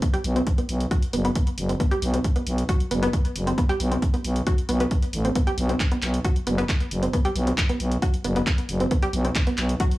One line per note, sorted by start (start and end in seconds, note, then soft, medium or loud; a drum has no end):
0.02 0.07 B3 medium
0.02 kick loud
0.02 closed hi-hat loud
0.14 0.21 G4 loud
0.14 closed hi-hat medium
0.24 0.42 B1 loud
0.24 open hi-hat loud
0.36 0.41 C4 medium
0.36 closed hi-hat medium
0.47 kick loud
0.47 closed hi-hat medium
0.58 0.63 B3 medium
0.58 closed hi-hat medium
0.69 0.86 B1 medium
0.69 open hi-hat loud
0.80 closed hi-hat medium
0.91 0.96 F#4 loud
0.91 kick loud
0.91 closed hi-hat loud
1.02 closed hi-hat medium
1.13 1.31 F#1 medium
1.13 1.16 B3 medium
1.13 open hi-hat loud
1.25 1.28 B3 loud
1.25 closed hi-hat medium
1.35 kick loud
1.35 closed hi-hat medium
1.47 closed hi-hat medium
1.58 1.75 F#1 medium
1.58 open hi-hat loud
1.69 1.72 C4 medium
1.69 closed hi-hat medium
1.80 1.85 B3 medium
1.80 kick loud
1.80 closed hi-hat loud
1.91 1.98 G4 loud
1.91 closed hi-hat medium
2.02 2.19 B1 loud
2.02 open hi-hat loud
2.14 2.18 C4 medium
2.14 closed hi-hat medium
2.24 kick loud
2.24 closed hi-hat medium
2.36 2.41 B3 medium
2.36 closed hi-hat medium
2.47 2.64 B1 medium
2.47 open hi-hat loud
2.58 closed hi-hat medium
2.69 2.74 F#4 loud
2.69 kick loud
2.69 closed hi-hat loud
2.80 closed hi-hat medium
2.91 3.08 F#1 medium
2.91 2.94 B3 medium
2.91 open hi-hat loud
3.03 3.05 B3 loud
3.03 closed hi-hat medium
3.13 kick loud
3.13 closed hi-hat medium
3.25 closed hi-hat medium
3.36 3.53 F#1 medium
3.36 open hi-hat loud
3.47 3.50 C4 medium
3.47 closed hi-hat medium
3.58 3.63 B3 medium
3.58 kick loud
3.58 closed hi-hat medium
3.69 3.76 G4 loud
3.69 closed hi-hat soft
3.80 3.97 B1 loud
3.80 open hi-hat loud
3.92 3.96 C4 medium
3.92 closed hi-hat medium
4.02 kick loud
4.02 closed hi-hat medium
4.14 4.18 B3 medium
4.14 closed hi-hat medium
4.25 4.42 B1 medium
4.25 open hi-hat loud
4.36 closed hi-hat medium
4.47 4.52 F#4 loud
4.47 kick loud
4.47 closed hi-hat medium
4.58 closed hi-hat medium
4.69 4.86 B1 medium
4.69 4.72 B3 medium
4.69 open hi-hat loud
4.80 4.83 B3 loud
4.80 closed hi-hat soft
4.91 kick loud
4.91 closed hi-hat medium
5.02 closed hi-hat medium
5.13 5.31 A1 medium
5.13 open hi-hat loud
5.25 5.28 C4 medium
5.25 closed hi-hat soft
5.35 5.41 B3 medium
5.35 kick loud
5.35 closed hi-hat medium
5.47 5.54 G4 loud
5.47 closed hi-hat soft
5.58 5.75 B1 loud
5.58 open hi-hat loud
5.69 5.74 C4 medium
5.69 closed hi-hat soft
5.80 kick loud
5.80 clap loud
5.80 closed hi-hat medium
5.92 5.96 B3 medium
5.92 closed hi-hat medium
6.02 6.20 B1 medium
6.02 clap medium
6.02 open hi-hat loud
6.14 closed hi-hat medium
6.25 6.30 F#4 loud
6.25 kick loud
6.25 closed hi-hat medium
6.36 closed hi-hat medium
6.47 6.64 F#1 medium
6.47 6.50 B3 medium
6.47 open hi-hat loud
6.58 6.61 B3 loud
6.58 closed hi-hat soft
6.69 kick loud
6.69 clap loud
6.69 closed hi-hat medium
6.80 closed hi-hat soft
6.91 7.08 F#1 medium
6.91 open hi-hat loud
7.03 7.05 C4 medium
7.03 closed hi-hat soft
7.13 7.18 B3 medium
7.13 kick loud
7.13 closed hi-hat medium
7.25 7.32 G4 loud
7.25 closed hi-hat soft
7.35 7.53 B1 loud
7.35 open hi-hat loud
7.47 7.52 C4 medium
7.47 closed hi-hat soft
7.58 kick loud
7.58 clap loud
7.58 closed hi-hat medium
7.69 7.74 B3 medium
7.69 closed hi-hat soft
7.80 7.97 B1 medium
7.80 open hi-hat loud
7.92 closed hi-hat soft
8.02 8.07 F#4 loud
8.02 kick loud
8.02 closed hi-hat medium
8.14 closed hi-hat medium
8.24 8.42 F#1 medium
8.24 8.28 B3 medium
8.24 open hi-hat loud
8.36 8.39 B3 loud
8.36 closed hi-hat soft
8.47 kick loud
8.47 clap loud
8.47 closed hi-hat medium
8.58 closed hi-hat soft
8.69 8.86 F#1 medium
8.69 open hi-hat loud
8.80 8.83 C4 medium
8.80 closed hi-hat soft
8.91 8.96 B3 medium
8.91 kick loud
8.91 closed hi-hat medium
9.02 9.10 G4 loud
9.02 closed hi-hat soft
9.13 9.31 B1 loud
9.13 open hi-hat loud
9.25 9.30 C4 medium
9.25 closed hi-hat soft
9.35 kick loud
9.35 clap loud
9.35 closed hi-hat medium
9.47 9.52 B3 medium
9.47 closed hi-hat medium
9.58 9.75 B1 medium
9.58 clap medium
9.58 open hi-hat loud
9.69 closed hi-hat medium
9.80 9.85 F#4 loud
9.80 kick loud
9.80 closed hi-hat medium
9.91 closed hi-hat medium